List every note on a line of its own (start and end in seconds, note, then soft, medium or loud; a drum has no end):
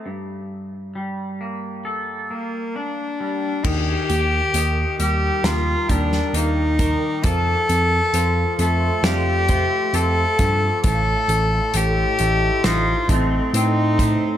0.06 2.30 G2 soft
0.95 3.19 G3 soft
1.41 2.29 A#3 soft
1.85 3.65 A4 soft
2.30 2.77 A#3 soft
2.30 3.65 A#3 soft
2.75 3.67 D4 medium
2.75 3.65 D4 soft
3.20 3.65 G3 soft
3.64 3.95 D#2 medium
3.64 4.54 D#3 medium
3.64 5.00 G4 medium
3.64 7.21 A#4 medium
3.64 7.21 G5 medium
3.64 5.43 D#6 medium
3.64 kick medium
3.64 crash medium
4.09 4.40 D#2 medium
4.09 5.00 G4 medium
4.09 closed hi-hat medium
4.54 4.84 D#2 medium
4.54 6.79 D#3 medium
4.54 closed hi-hat medium
4.99 5.29 D#2 medium
4.99 5.88 G3 medium
4.99 5.46 G4 medium
4.99 closed hi-hat medium
5.44 5.75 D#2 medium
5.44 5.92 F4 medium
5.44 6.35 A#4 medium
5.44 7.23 D6 medium
5.44 snare medium
5.44 closed hi-hat medium
5.89 6.20 D#2 medium
5.89 7.25 G3 medium
5.89 6.36 D4 medium
5.89 kick medium
5.89 closed hi-hat medium
6.12 snare soft
6.34 6.95 D#2 medium
6.34 7.25 A#3 medium
6.34 7.27 D#4 medium
6.34 closed hi-hat medium
6.79 7.24 D#3 soft
6.79 7.24 A#4 medium
6.79 kick medium
6.79 closed hi-hat medium
7.24 7.55 F2 medium
7.24 8.14 F3 medium
7.24 8.65 A4 medium
7.24 8.58 A4 loud
7.24 14.37 A4 medium
7.24 10.81 F5 medium
7.24 9.03 C6 medium
7.24 kick loud
7.24 closed hi-hat medium
7.69 8.00 F2 medium
7.69 closed hi-hat medium
8.14 8.44 F2 medium
8.14 10.39 F3 medium
8.14 closed hi-hat medium
8.59 8.90 F2 medium
8.59 9.50 A3 medium
8.59 9.05 A4 medium
8.59 closed hi-hat soft
9.03 9.64 F2 medium
9.03 10.85 F4 medium
9.03 9.96 G4 medium
9.03 9.49 D5 medium
9.03 10.83 D6 medium
9.03 snare medium
9.03 closed hi-hat medium
9.48 12.19 A3 medium
9.48 9.94 C5 medium
9.48 kick medium
9.48 closed hi-hat medium
9.93 10.24 F2 medium
9.93 10.84 C4 medium
9.93 11.30 A4 medium
9.93 10.84 A4 loud
9.93 closed hi-hat medium
10.39 10.69 G2 medium
10.39 10.85 F3 medium
10.39 kick medium
10.39 closed hi-hat medium
10.84 11.14 A1 medium
10.84 11.74 A2 medium
10.84 11.77 A4 loud
10.84 14.37 D#5 medium
10.84 14.37 C6 medium
10.84 kick medium
10.84 closed hi-hat medium
11.29 11.59 A1 medium
11.29 14.37 A4 medium
11.29 closed hi-hat medium
11.74 12.04 A1 medium
11.74 13.99 A2 medium
11.74 12.67 G4 medium
11.74 closed hi-hat medium
12.19 12.49 A1 medium
12.19 13.09 A3 medium
12.19 closed hi-hat medium
12.64 12.94 A1 medium
12.64 14.37 D#4 medium
12.64 13.12 F4 medium
12.64 13.54 C5 medium
12.64 snare medium
12.64 closed hi-hat medium
13.09 13.39 A1 medium
13.09 14.37 A3 medium
13.09 13.58 C4 medium
13.09 kick medium
13.09 closed hi-hat medium
13.54 14.14 A2 medium
13.54 14.37 C4 medium
13.54 14.37 D#4 medium
13.54 closed hi-hat medium
13.99 14.37 A2 medium
13.99 14.37 C5 medium
13.99 kick medium
13.99 closed hi-hat medium